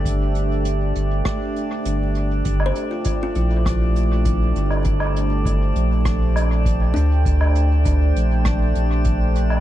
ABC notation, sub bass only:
X:1
M:4/4
L:1/8
Q:1/4=100
K:Gdor
V:1 name="Sub bass" clef=bass
G,,,3 G,,, z2 G,,,2 | G,,, z2 B,,,4 G,,,- | G,,,3 B,,,4 D,,- | D,,3 B,,,2 B,,,3 |]